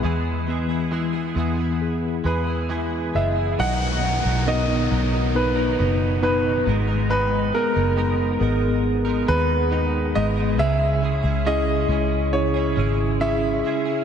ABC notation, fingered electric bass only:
X:1
M:4/4
L:1/16
Q:1/4=69
K:B
V:1 name="Fingered electric bass" clef=bass
E,,6 E,,4 E,,4 F,,,2 | B,,,3 B,,,3 B,,,4 F,,,4 G,,,2- | G,,,2 z F,,,3 G,,,4 D,,4 G,,,2 | C,,3 C,,3 C,,4 G,,,4 z2 |]